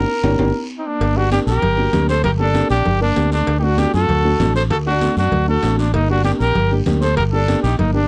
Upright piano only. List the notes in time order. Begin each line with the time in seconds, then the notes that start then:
0.24 A#3 D4 G4
0.39 A#3 D4 G4
1.16 A#3 D4 G4
1.31 A#3 D4 G4
1.78 A#3 D4 F#4
1.93 A#3 D4 G4
2.39 A#3 D4 G4
2.54 A#3 D4 G4
3.01 A#3 D4 A#4
3.16 A#3 D4 G4
3.62 A3 D4 F#4
3.77 A3 D4 F#4
4.24 A3 D4 F#4
4.40 A3 D4 F#4
4.86 A3 D4 F#4
5.01 A3 D4 F#4
5.48 A3 D4 F#4
5.63 A3 D4 F#4
6.09 A#3 D4 G4
6.25 A#3 D4 G4
6.71 A#3 D4 G4
6.86 A#3 D4 G4
7.32 A#3 D4 G4
7.48 A#3 D4 G4
7.94 A#3 D4 G4